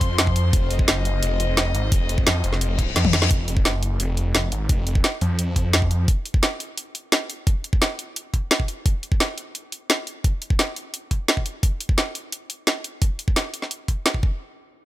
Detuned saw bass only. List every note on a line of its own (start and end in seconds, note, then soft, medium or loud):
0.00 0.52 F2 loud
0.53 0.69 F1 loud
0.71 0.87 F1 medium
0.88 1.21 F#1 medium
1.23 1.73 F1 loud
1.75 1.91 G#1 medium
1.92 2.08 F1 loud
2.09 2.25 F1 loud
2.27 2.43 F2 medium
2.44 2.95 F1 loud
2.96 3.29 F2 medium
3.31 3.47 F1 loud
3.48 3.64 F1 medium
3.65 3.99 F#1 loud
4.00 4.51 F1 loud
4.52 4.68 G#1 loud
4.69 4.85 F1 loud
4.87 5.03 F1 medium
5.21 6.07 F2 loud